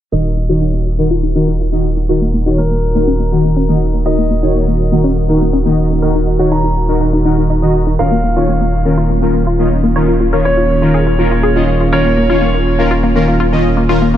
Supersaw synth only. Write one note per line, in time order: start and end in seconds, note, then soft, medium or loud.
0.12 0.21 D#3 loud
0.12 0.21 D#4 medium
0.12 0.21 F#4 medium
0.12 0.21 A#4 loud
0.49 0.63 D#3 medium
0.49 0.63 D#4 medium
0.49 0.63 F#4 medium
0.49 0.63 C#5 medium
0.98 1.07 D#3 medium
0.98 1.07 D#4 medium
0.98 1.07 F#4 medium
0.98 1.07 A#4 loud
1.35 1.44 D#3 medium
1.35 1.44 D#4 medium
1.35 1.44 F#4 medium
1.35 1.44 A#4 medium
1.72 1.81 D#3 medium
1.72 1.81 D#4 medium
1.72 1.81 F#4 medium
1.72 1.81 D#5 loud
2.09 2.18 D#3 loud
2.09 2.18 D#4 medium
2.09 2.18 F#4 medium
2.09 2.18 A#4 loud
2.46 2.60 D#3 medium
2.46 2.60 D#4 medium
2.46 2.60 F#4 medium
2.46 2.60 C#5 medium
2.95 3.04 D#3 medium
2.95 3.04 D#4 medium
2.95 3.04 F#4 medium
2.95 3.04 A#4 loud
3.32 3.41 D#3 medium
3.32 3.41 D#4 medium
3.32 3.41 F#4 medium
3.32 3.41 A#4 medium
3.69 3.78 D#3 medium
3.69 3.78 D#4 medium
3.69 3.78 F#4 medium
3.69 3.78 D#5 loud
4.06 4.15 D#3 loud
4.06 4.15 D#4 medium
4.06 4.15 F#4 medium
4.06 4.15 A#4 loud
4.43 4.57 D#3 medium
4.43 4.57 D#4 medium
4.43 4.57 F#4 medium
4.43 4.57 C#5 medium
4.92 5.01 D#3 medium
4.92 5.01 D#4 medium
4.92 5.01 F#4 medium
4.92 5.01 A#4 loud
5.29 5.38 D#3 medium
5.29 5.38 D#4 medium
5.29 5.38 F#4 medium
5.29 5.38 A#4 medium
5.66 5.74 D#3 medium
5.66 5.74 D#4 medium
5.66 5.74 F#4 medium
5.66 5.74 D#5 loud
6.02 6.11 D#3 medium
6.02 6.11 D#4 medium
6.02 6.11 F#4 medium
6.02 6.11 A#4 loud
6.39 6.53 D#3 medium
6.39 6.53 D#4 medium
6.39 6.53 F#4 medium
6.39 6.53 C#5 medium
6.89 6.97 D#3 medium
6.89 6.97 D#4 medium
6.89 6.97 F#4 medium
6.89 6.97 A#4 loud
7.25 7.34 D#3 medium
7.25 7.34 D#4 medium
7.25 7.34 F#4 medium
7.25 7.34 A#4 loud
7.62 7.71 D#3 medium
7.62 7.71 D#4 medium
7.62 7.71 F#4 medium
7.62 7.71 D#5 loud
7.99 8.08 D#3 loud
7.99 8.08 C#4 medium
7.99 8.08 F4 medium
7.99 8.08 A#4 loud
8.36 8.50 D#3 medium
8.36 8.50 C#4 medium
8.36 8.50 F4 medium
8.36 8.50 C#5 medium
8.85 8.94 D#3 medium
8.85 8.94 C#4 medium
8.85 8.94 F4 medium
8.85 8.94 A#4 loud
9.22 9.31 D#3 medium
9.22 9.31 C#4 medium
9.22 9.31 F4 medium
9.22 9.31 A#4 loud
9.59 9.68 D#3 medium
9.59 9.68 C#4 medium
9.59 9.68 F4 medium
9.59 9.68 D#5 loud
9.96 10.05 D#3 loud
9.96 10.05 C#4 medium
9.96 10.05 F4 medium
9.96 10.05 A#4 loud
10.33 10.47 D#3 medium
10.33 10.47 C#4 medium
10.33 10.47 F4 medium
10.33 10.47 C#5 medium
10.82 10.91 D#3 medium
10.82 10.91 C#4 medium
10.82 10.91 F4 medium
10.82 10.91 A#4 loud
11.19 11.28 D#3 medium
11.19 11.28 C#4 medium
11.19 11.28 F4 medium
11.19 11.28 A#4 loud
11.56 11.65 D#3 medium
11.56 11.65 C#4 medium
11.56 11.65 F4 medium
11.56 11.65 D#5 loud
11.93 12.01 D#3 loud
11.93 12.02 C#4 medium
11.93 12.02 F4 medium
11.93 12.02 A#4 loud
12.30 12.44 D#3 medium
12.30 12.44 C#4 medium
12.30 12.44 F4 medium
12.30 12.44 C#5 medium
12.79 12.88 D#3 medium
12.79 12.88 C#4 medium
12.79 12.88 F4 medium
12.79 12.88 A#4 loud
13.16 13.24 D#3 medium
13.16 13.24 C#4 medium
13.16 13.24 F4 medium
13.16 13.24 A#4 medium
13.52 13.61 D#3 medium
13.52 13.61 C#4 medium
13.52 13.61 F4 medium
13.52 13.61 D#5 loud
13.89 13.98 D#3 loud
13.89 13.98 C#4 medium
13.89 13.98 F4 medium
13.89 13.98 A#4 loud